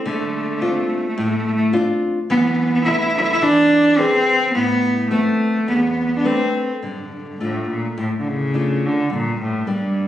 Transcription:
0.06 0.60 D3 medium
0.06 0.12 A3 medium
0.13 0.20 A3 medium
0.20 0.26 A3 medium
0.27 0.34 A3 medium
0.35 0.41 A3 medium
0.42 0.49 A3 medium
0.50 0.56 A3 medium
0.57 0.64 A3 medium
0.61 1.06 C4 soft
0.61 1.06 D4 soft
0.61 1.07 F4 medium
0.65 0.72 A3 medium
0.73 0.80 A3 medium
0.81 0.86 A3 medium
0.86 0.94 A3 soft
0.96 1.02 A3 medium
1.02 1.07 A3 soft
1.07 1.16 A3 medium
1.17 1.72 A2 medium
1.17 1.24 A3 medium
1.25 1.30 A3 medium
1.31 1.37 A3 medium
1.37 1.46 A3 medium
1.46 1.54 A3 medium
1.54 1.62 A3 medium
1.73 2.18 C4 medium
1.73 2.18 D4 soft
1.73 2.18 F4 medium
2.30 2.84 E3 medium
2.30 2.37 B3 loud
2.38 2.44 B3 medium
2.45 2.51 B3 medium
2.52 2.59 B3 medium
2.60 2.66 B3 medium
2.67 2.72 B3 medium
2.73 2.81 B3 medium
2.84 3.30 A3 medium
2.84 3.30 B3 soft
2.84 2.91 E4 loud
2.84 3.31 E4 medium
2.92 2.99 E4 medium
2.99 3.07 E4 loud
3.08 3.15 E4 medium
3.16 3.23 E4 medium
3.23 3.30 E4 medium
3.32 3.36 E4 loud
3.36 3.44 E4 medium
3.42 3.96 E3 medium
3.42 4.00 D4 loud
3.98 4.53 C4 loud
3.98 4.44 E4 medium
3.98 4.44 G#4 medium
3.98 4.44 B4 medium
4.54 5.10 A2 medium
4.54 5.07 B3 loud
5.11 5.56 A3 medium
5.11 5.64 A3 medium
5.11 5.57 B3 soft
5.11 5.57 C4 medium
5.68 6.24 E2 medium
5.68 5.76 B3 medium
5.77 5.84 B3 medium
5.84 5.91 B3 medium
5.92 5.98 B3 medium
5.99 6.06 B3 medium
6.06 6.14 B3 medium
6.16 6.28 B3 medium
6.16 6.18 D4 medium
6.25 6.71 A3 soft
6.25 6.72 C4 medium
6.25 6.70 C4 medium
6.25 6.72 B4 soft
6.82 6.90 G2 soft
6.82 7.39 D3 soft
6.91 6.98 G2 soft
6.99 7.06 G2 soft
7.07 7.14 G2 soft
7.15 7.22 G2 medium
7.23 7.28 G2 soft
7.29 7.36 G2 soft
7.40 7.68 A2 medium
7.40 7.87 A3 soft
7.40 7.87 D4 soft
7.40 7.87 F4 soft
7.70 7.96 A#2 soft
7.98 8.53 A2 medium
7.98 8.08 A2 medium
8.19 8.30 D3 medium
8.28 8.88 C#3 medium
8.54 9.00 A3 soft
8.54 9.00 D4 soft
8.54 9.00 F4 soft
8.86 9.13 D3 medium
9.10 9.66 G2 medium
9.14 9.39 A#2 medium
9.41 9.67 A2 medium
9.67 10.08 G2 medium
9.67 10.08 G3 soft
9.67 10.08 A#3 soft
9.67 10.08 D4 soft

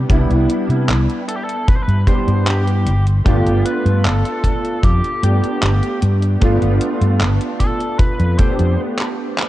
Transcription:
0.00 0.09 G3 medium
0.00 0.10 B3 medium
0.00 0.11 D4 medium
0.00 2.09 G4 medium
0.09 0.27 C2 medium
0.09 2.02 G3 medium
0.09 2.03 B3 medium
0.09 2.03 D4 medium
0.09 2.04 E4 loud
0.09 kick loud
0.09 closed hi-hat medium
0.30 0.46 C2 medium
0.30 closed hi-hat soft
0.50 closed hi-hat medium
0.69 0.90 C3 loud
0.69 closed hi-hat soft
0.88 1.06 C2 loud
0.88 clap loud
0.88 closed hi-hat medium
1.10 closed hi-hat soft
1.28 1.35 A4 medium
1.28 closed hi-hat medium
1.36 1.43 G4 medium
1.44 1.67 A4 loud
1.49 closed hi-hat soft
1.68 1.76 B4 loud
1.68 kick loud
1.68 closed hi-hat medium
1.76 1.82 C5 medium
1.83 2.07 B4 loud
1.88 2.04 G2 medium
1.88 closed hi-hat soft
2.07 2.28 G3 medium
2.07 2.28 B3 medium
2.07 2.28 D4 medium
2.07 2.29 G4 medium
2.07 2.48 C5 loud
2.07 kick medium
2.07 closed hi-hat medium
2.27 2.88 G2 medium
2.27 closed hi-hat soft
2.47 3.03 G4 medium
2.47 clap loud
2.47 closed hi-hat medium
2.68 closed hi-hat soft
2.86 3.19 G1 medium
2.86 closed hi-hat medium
3.07 closed hi-hat soft
3.24 3.43 G1 medium
3.24 5.18 A3 medium
3.24 5.18 B3 medium
3.24 5.19 D4 medium
3.24 5.19 F4 medium
3.24 3.67 G4 medium
3.24 kick loud
3.24 closed hi-hat medium
3.46 3.62 G1 medium
3.46 closed hi-hat soft
3.66 4.05 B4 loud
3.66 closed hi-hat medium
3.85 4.06 G2 loud
3.85 closed hi-hat soft
4.05 4.22 G1 medium
4.05 4.86 A4 medium
4.05 clap loud
4.05 closed hi-hat medium
4.25 closed hi-hat soft
4.44 kick medium
4.44 closed hi-hat medium
4.65 closed hi-hat soft
4.83 5.00 F2 medium
4.83 5.23 G4 medium
4.83 kick loud
4.83 closed hi-hat medium
5.04 closed hi-hat soft
5.22 5.40 G2 medium
5.22 5.43 A3 medium
5.22 5.44 B3 medium
5.22 5.44 D4 medium
5.22 5.44 G4 medium
5.22 5.98 G4 medium
5.22 closed hi-hat medium
5.44 muted fretless electric bass stroke soft
5.44 closed hi-hat soft
5.62 5.80 G1 loud
5.62 clap loud
5.62 closed hi-hat medium
5.83 closed hi-hat soft
6.02 6.35 G2 medium
6.02 closed hi-hat medium
6.22 closed hi-hat soft
6.40 6.59 G1 medium
6.40 8.34 A3 medium
6.40 8.34 B3 medium
6.40 8.35 D4 medium
6.40 8.35 F4 medium
6.40 kick loud
6.40 closed hi-hat medium
6.62 6.78 G1 medium
6.62 closed hi-hat soft
6.81 closed hi-hat loud
7.01 7.22 G2 medium
7.01 closed hi-hat soft
7.20 7.37 G1 loud
7.20 clap loud
7.20 closed hi-hat medium
7.41 closed hi-hat soft
7.60 7.99 A4 medium
7.60 kick medium
7.60 closed hi-hat medium
7.80 closed hi-hat soft
7.99 8.38 B4 loud
7.99 kick loud
7.99 closed hi-hat medium
8.20 8.36 F2 medium
8.20 closed hi-hat soft
8.38 8.59 A3 medium
8.38 8.60 B3 medium
8.38 8.60 D4 medium
8.38 8.60 G4 medium
8.38 8.79 C5 loud
8.38 kick loud
8.38 closed hi-hat medium
8.59 8.75 F2 medium
8.59 closed hi-hat soft
8.99 clap medium
9.38 clap loud

